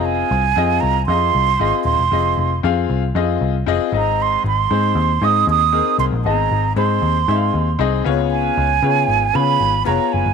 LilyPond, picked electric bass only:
\new Staff \with { instrumentName = "Picked electric bass" } { \clef bass \time 4/4 \key aes \major \tempo 4 = 116 f,,8 c,8 f,8 c,8 f,8 c,8 aes,,16 r16 ees,,16 fes,,16 | f,,8 f,,8 f,8 c,8 f,8 c,8 f,,16 r16 aes,,8~ | aes,,8 aes,,8 aes,8 ees,8 aes,8 ees,8. r16 c,16 bes,,16 | aes,,8 aes,,8 aes,8 ees,8 aes,8 ees,8 c,8 des,8~ |
des,8 des,8 des8 aes,,8 des8 aes,,8 f,,16 r16 ges,,16 g,,16 | }